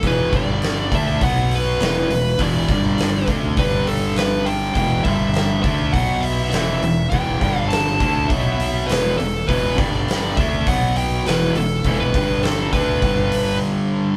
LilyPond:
<<
  \new Staff \with { instrumentName = "Lead electric guitar" } { \time 4/4 \key e \minor \tempo 4 = 102 b'8 d''4 e''8 fis''8 b'4. | d''4. r8 b'8 a'8 b'8 g''8 | g''8 e''4 e''8 fis''8 e''8 e''4 | g''4 a''4 e''4 b'8 a'8 |
b'8 d''4 e''8 fis''8 g''8 b'8 a'8~ | a'16 b'8. a'8 b'4. r4 | }
  \new Staff \with { instrumentName = "Distorted electric guitar" } { \clef bass \time 4/4 \key e \minor <e, b, e>8 <g, d g>4 <d a d'>8 <b, fis b>4 <e, b, e>8 <e, b,>8 | <e, b, e>8 <g, d g>4 <d a d'>8 <g, d g>2 | <e, b, e>8 <g, d g>4 <d a d'>8 <b, fis b>4 <e, b, e>8 <e, b,>8 | <e, b, e>8 <g, d g>4 <d a d'>8 <b, fis b>4 <e, b, e>8 <e, b,>8 |
<e, b, e>8 <g, d g>4 <d a d'>8 <b, fis b>4 <e, b, e>8 <e, b,>8 | <e, b, e>8 <g, d g>4 <d a d'>8 <g, d g>2 | }
  \new Staff \with { instrumentName = "Fingered electric bass" } { \clef bass \time 4/4 \key e \minor e,,8 g,,4 d,8 b,,4 e,,8 e,,8 | e,,8 g,,4 d,8 g,,2 | e,,8 g,,4 d,8 b,,4 e,,8 e,,8 | e,,8 g,,4 d,8 b,,4 e,,8 e,,8 |
e,,8 g,,4 d,8 b,,4 e,,8 e,,8 | e,,8 g,,4 d,8 g,,4 r4 | }
  \new DrumStaff \with { instrumentName = "Drums" } \drummode { \time 4/4 <hho bd>8 <hho bd>8 <hho sn>8 <hho bd>8 <hho bd>8 hho8 <hho sn>8 hho8 | <hho bd>8 <hho bd>8 <hho sn>8 <hho bd>8 <hho bd>8 hho8 <hho sn>8 hho8 | <hho bd>8 <hho bd>8 <hho sn>8 <hho bd>8 <hho bd>8 hho8 <hho sn>8 hho8 | <hho bd>8 <hho bd>8 <hho sn>16 sn16 <hho bd>8 <hho bd>8 hho8 <hho sn>8 hho8 |
<hho bd>8 <hho bd>8 <hho sn>8 <hho bd>8 <hho bd>8 hho8 <hho sn>8 hho8 | <hho bd>8 <hho bd>8 <hho sn>16 sn16 <hho bd>8 <hho bd>8 hho8 r4 | }
>>